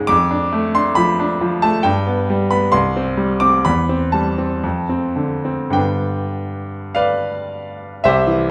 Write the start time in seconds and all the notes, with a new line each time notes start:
Already playing: C#2 G#2 G#3 C#4 G#5 A#5
0.07 F2 D6
0.31 D4
0.53 A3
0.75 D4 C6
0.95 F3 B5
1.19 D4
1.41 F3
1.62 A3 A5
1.83 G2 G5
2.07 B3
2.30 G3
2.51 B3 B5
2.72 C2 C6
2.96 C4
3.17 G3
3.40 C4 D6
3.65 E2 B5
3.89 C4
4.12 G3 A5
4.38 C4
4.64 F2
4.89 C4
5.16 D3
5.45 C4
5.70 G2 D3 B3 D4 G5
6.95 B4 D5 F5
8.04 C2 G4 C5 E5
8.27 E3